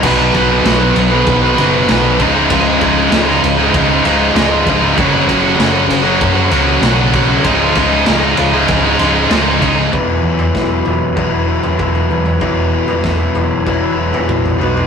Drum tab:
CC |x---------------|----------------|----------------|----------------|
RD |--x-x-x-x-x-x-x-|x-x-x-x-x-x-x-x-|x-x-x-x-x-x-x-x-|x-x-x-x-x-x-x-x-|
SD |----o-------o---|----oo------o---|----o-------o---|----o-------o---|
T2 |----------------|----------------|----------------|----------------|
FT |----------------|----------------|----------------|----------------|
BD |o-o-----o-----o-|o-o-----o-----o-|o-o-----o-----o-|o-o-----o-----o-|

CC |----------------|----------------|
RD |----------------|----------------|
SD |----o-----------|----o-----------|
T2 |--------o-----o-|--------o-----o-|
FT |o--o--o-o--ooo-o|o--o--o-o--ooo-o|
BD |o---o---o---o---|o---o---o---o---|